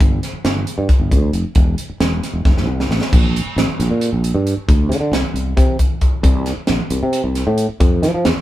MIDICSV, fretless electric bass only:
0, 0, Header, 1, 3, 480
1, 0, Start_track
1, 0, Time_signature, 7, 3, 24, 8
1, 0, Tempo, 446097
1, 9052, End_track
2, 0, Start_track
2, 0, Title_t, "Fretless electric bass"
2, 0, Program_c, 0, 35
2, 5, Note_on_c, 0, 31, 86
2, 202, Note_off_c, 0, 31, 0
2, 478, Note_on_c, 0, 31, 75
2, 678, Note_off_c, 0, 31, 0
2, 836, Note_on_c, 0, 43, 71
2, 937, Note_off_c, 0, 43, 0
2, 1072, Note_on_c, 0, 31, 70
2, 1197, Note_on_c, 0, 38, 75
2, 1213, Note_off_c, 0, 31, 0
2, 1398, Note_off_c, 0, 38, 0
2, 1434, Note_on_c, 0, 29, 76
2, 1536, Note_off_c, 0, 29, 0
2, 1674, Note_on_c, 0, 28, 91
2, 1876, Note_off_c, 0, 28, 0
2, 2156, Note_on_c, 0, 28, 82
2, 2357, Note_off_c, 0, 28, 0
2, 2512, Note_on_c, 0, 28, 66
2, 2615, Note_off_c, 0, 28, 0
2, 2637, Note_on_c, 0, 29, 81
2, 2738, Note_off_c, 0, 29, 0
2, 2748, Note_on_c, 0, 29, 70
2, 2864, Note_off_c, 0, 29, 0
2, 2864, Note_on_c, 0, 36, 78
2, 3070, Note_off_c, 0, 36, 0
2, 3113, Note_on_c, 0, 33, 71
2, 3215, Note_off_c, 0, 33, 0
2, 3363, Note_on_c, 0, 34, 95
2, 3662, Note_off_c, 0, 34, 0
2, 3835, Note_on_c, 0, 33, 80
2, 3937, Note_off_c, 0, 33, 0
2, 4084, Note_on_c, 0, 34, 81
2, 4182, Note_off_c, 0, 34, 0
2, 4203, Note_on_c, 0, 46, 74
2, 4402, Note_off_c, 0, 46, 0
2, 4440, Note_on_c, 0, 34, 75
2, 4639, Note_off_c, 0, 34, 0
2, 4675, Note_on_c, 0, 43, 80
2, 4877, Note_off_c, 0, 43, 0
2, 5040, Note_on_c, 0, 38, 90
2, 5264, Note_on_c, 0, 50, 85
2, 5280, Note_off_c, 0, 38, 0
2, 5371, Note_off_c, 0, 50, 0
2, 5381, Note_on_c, 0, 50, 70
2, 5489, Note_off_c, 0, 50, 0
2, 5504, Note_on_c, 0, 36, 99
2, 5610, Note_off_c, 0, 36, 0
2, 5746, Note_on_c, 0, 36, 68
2, 5951, Note_off_c, 0, 36, 0
2, 5991, Note_on_c, 0, 48, 75
2, 6195, Note_off_c, 0, 48, 0
2, 6706, Note_on_c, 0, 36, 108
2, 7011, Note_off_c, 0, 36, 0
2, 7201, Note_on_c, 0, 34, 81
2, 7300, Note_off_c, 0, 34, 0
2, 7431, Note_on_c, 0, 36, 88
2, 7534, Note_off_c, 0, 36, 0
2, 7561, Note_on_c, 0, 48, 81
2, 7760, Note_off_c, 0, 48, 0
2, 7789, Note_on_c, 0, 36, 74
2, 7992, Note_off_c, 0, 36, 0
2, 8035, Note_on_c, 0, 45, 92
2, 8235, Note_off_c, 0, 45, 0
2, 8395, Note_on_c, 0, 41, 94
2, 8635, Note_on_c, 0, 53, 90
2, 8652, Note_off_c, 0, 41, 0
2, 8735, Note_off_c, 0, 53, 0
2, 8762, Note_on_c, 0, 53, 77
2, 8859, Note_off_c, 0, 53, 0
2, 8883, Note_on_c, 0, 40, 98
2, 8979, Note_off_c, 0, 40, 0
2, 9052, End_track
3, 0, Start_track
3, 0, Title_t, "Muted fretless electric bass strokes"
3, 358, Note_on_c, 9, 29, 32
3, 466, Note_off_c, 9, 29, 0
3, 2041, Note_on_c, 9, 29, 35
3, 2148, Note_off_c, 9, 29, 0
3, 3718, Note_on_c, 9, 29, 33
3, 3826, Note_off_c, 9, 29, 0
3, 3969, Note_on_c, 9, 29, 36
3, 4077, Note_off_c, 9, 29, 0
3, 4918, Note_on_c, 9, 29, 35
3, 5026, Note_off_c, 9, 29, 0
3, 5621, Note_on_c, 9, 29, 33
3, 5728, Note_off_c, 9, 29, 0
3, 7318, Note_on_c, 9, 29, 34
3, 7426, Note_off_c, 9, 29, 0
3, 8273, Note_on_c, 9, 29, 37
3, 8381, Note_off_c, 9, 29, 0
3, 8997, Note_on_c, 9, 29, 34
3, 9052, Note_off_c, 9, 29, 0
3, 9052, End_track
0, 0, End_of_file